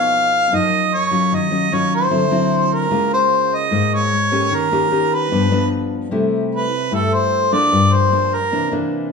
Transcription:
Already playing: B2 F3 A#3 D#4 F5
0.52 F#2 F3 A#3 D#4 D#5
0.95 C#5
1.11 F#3 C#4 F4
1.32 D#3 D#5
1.51 F#3 C#4 F4
1.72 F#3 C#4 F4 C#5
1.96 C5
2.10 D3 F#3 C4 E4
2.31 F#3 C4 E4
2.75 A#4
2.91 C#3 G#3 A#3 F4
3.14 C5
3.55 D#5
3.71 G#2 G#3 A#3 F4
3.94 C#5
4.32 A#3 C#4 G4
4.51 D#3 A#4
4.72 A#3 C#4 G4
4.91 A#3 C#4 G4
5.15 B4
5.31 G2 F3 B3 D4
5.51 F3 B3 D4
6.11 C3 G3 A3 E4
6.55 B4
6.91 G2 G3 A3 E4 A4
7.14 C5
7.52 F3 A#3 D4 D5
7.72 G2
7.94 C5
8.12 F3 A#3 D4
8.35 A#4
8.52 C3 E3 A#3 D4
8.71 E3 A#3 D4

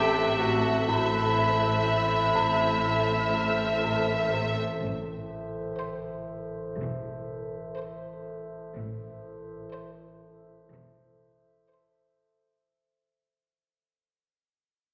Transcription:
Already playing: A1 A2 C4 G4 A4 E5 G5 A5 F#6
0.38 A2 F#4 F#5
0.87 A1 A2 C4 E4 A4 C5 E5
1.38 A2
1.87 A2
2.36 A2
2.69 F6
2.85 A2
3.34 A2
3.84 A2
4.33 A2
4.81 A1 A2 A4 C5 E5
5.80 C5
6.78 E1 E2
7.76 C5
8.74 A1 A2 A4 C5 E5
9.73 C5
10.71 E1 E2
11.70 C5

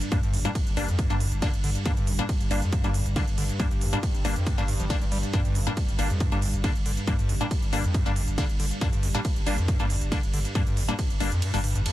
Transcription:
Already playing: G2
0.01 closed hi-hat
0.12 G2 G3 A#3 D4, kick, closed hi-hat, ride
0.23 G1 G2, closed hi-hat
0.33 G1 F2, open hi-hat
0.45 A2 G3 A#3 D4, closed hi-hat
0.55 kick, closed hi-hat, ride
0.67 G1, closed hi-hat
0.77 G1 G3 A#3 D4, open hi-hat
0.88 F2, closed hi-hat
0.99 G2, kick, closed hi-hat, ride
1.10 G1 G2 G3 A#3 D4, closed hi-hat
1.20 G1 F2, open hi-hat
1.32 G1, closed hi-hat
1.42 D3 G3 A#3 D4, kick, closed hi-hat, ride
1.54 G1, closed hi-hat
1.64 G1 D3, open hi-hat
1.75 closed hi-hat
1.86 G2 G3 A#3 D4, kick, closed hi-hat, ride
1.97 G1 G2, closed hi-hat
2.07 G1 F2, open hi-hat
2.19 A2 G3 A#3 D4, closed hi-hat
2.29 kick, closed hi-hat, ride
2.41 G1, closed hi-hat
2.51 G1 G3 A#3 D4, open hi-hat
2.62 F2, closed hi-hat
2.73 G2, kick, closed hi-hat, ride
2.84 G1 G2 G3 A#3 D4, closed hi-hat
2.94 G1 F2, open hi-hat
3.06 G1, closed hi-hat
3.16 D3 G3 A#3 D4, kick, closed hi-hat, ride
3.28 G1, closed hi-hat
3.38 G1 D3, open hi-hat
3.49 closed hi-hat
3.60 G2 G3 A#3 D4, kick, closed hi-hat, ride
3.71 G1 G2, closed hi-hat
3.81 G1 F2, open hi-hat
3.93 A2 G3 A#3 D4, closed hi-hat
4.03 kick, closed hi-hat, ride
4.15 G1, closed hi-hat
4.25 G1 G3 A#3 D4, open hi-hat
4.36 F2, closed hi-hat
4.47 G2, kick, closed hi-hat, ride
4.58 G1 G2 G3 A#3 D4, closed hi-hat
4.68 G1 G2, open hi-hat
4.80 G1 F3, closed hi-hat
4.90 G2 G3 A#3 D4, kick, closed hi-hat, ride
5.02 G1 G3, closed hi-hat
5.12 G1 G3, open hi-hat
5.23 closed hi-hat
5.33 G2 G3 A#3 D4, kick, closed hi-hat, ride
5.45 G1 G2, closed hi-hat
5.55 G1 F2, open hi-hat
5.67 A2 G3 A#3 D4, closed hi-hat
5.77 kick, closed hi-hat, ride
5.88 G1, closed hi-hat
5.99 G1 G3 A#3 D4, open hi-hat
6.10 F2, closed hi-hat
6.20 G2, kick, closed hi-hat, ride
6.32 G1 G2 G3 A#3 D4, closed hi-hat
6.42 G1 F2, open hi-hat
6.54 G1, closed hi-hat
6.64 D3 G3 A#3 D4, kick, closed hi-hat, ride
6.75 G1, closed hi-hat
6.86 G1 D3, open hi-hat
6.97 closed hi-hat
7.07 G2 G3 A#3 D4, kick, closed hi-hat, ride
7.19 G1 G2, closed hi-hat
7.29 G1 F2, open hi-hat
7.41 A2 G3 A#3 D4, closed hi-hat
7.51 kick, closed hi-hat, ride
7.62 G1, closed hi-hat
7.73 G1 G3 A#3 D4, open hi-hat
7.84 F2, closed hi-hat
7.94 G2, kick, closed hi-hat, ride
8.06 G1 G2 G3 A#3 D4, closed hi-hat
8.16 G1 F2, open hi-hat
8.28 G1, closed hi-hat
8.38 D3 G3 A#3 D4, kick, closed hi-hat, ride
8.49 G1, closed hi-hat
8.60 G1 D3, open hi-hat
8.71 closed hi-hat
8.81 G2 G3 A#3 D4, kick, closed hi-hat, ride
8.93 G1 G2, closed hi-hat
9.03 G1 F2, open hi-hat
9.15 A2 G3 A#3 D4, closed hi-hat
9.25 kick, closed hi-hat, ride
9.36 G1, closed hi-hat
9.46 G1 G3 A#3 D4, open hi-hat
9.58 F2, closed hi-hat
9.68 G2, kick, closed hi-hat, ride
9.80 G1 G2 G3 A#3 D4, closed hi-hat
9.90 G1 F2, open hi-hat
10.02 G1, closed hi-hat
10.12 D3 G3 A#3 D4, kick, closed hi-hat, ride
10.23 G1, closed hi-hat
10.33 G1 D3, open hi-hat
10.45 closed hi-hat
10.55 G2 G3 A#3 D4, kick, closed hi-hat, ride
10.67 G1 G2, closed hi-hat
10.77 G1 F2, open hi-hat
10.88 A2 G3 A#3 D4, closed hi-hat
10.99 kick, closed hi-hat, ride
11.10 G1, closed hi-hat
11.20 G1 G3 A#3 D4, open hi-hat
11.32 F2, closed hi-hat
11.42 G2, closed hi-hat, ride
11.54 G1 G2 G3 A#3 D4, open hi-hat
11.64 G1 G2, open hi-hat
11.75 G1 G2, closed hi-hat
11.86 F2, closed hi-hat, ride

